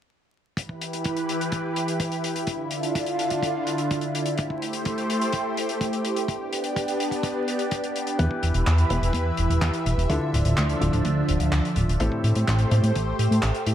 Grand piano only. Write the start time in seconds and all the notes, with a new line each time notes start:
8.19 E3 B3 E4 G4 B4
8.90 E3 B3 E4 G4 B4
10.09 D3 D4 E4 F4 A4
10.81 D3 D4 E4 F4 A4
12.00 A2 C4 E4 G4 A4
12.71 A2 C4 E4 G4 A4